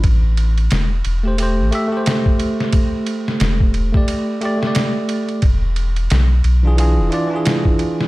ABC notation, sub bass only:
X:1
M:4/4
L:1/16
Q:"Swing 16ths" 1/4=89
K:Am
V:1 name="Sub bass" clef=bass
A,,,4 E,,,2 E,,,3 A,,, z6 | z4 E,,,2 E,,, z8 z | E,,,4 B,,,2 B,,,3 E,,, z6 |]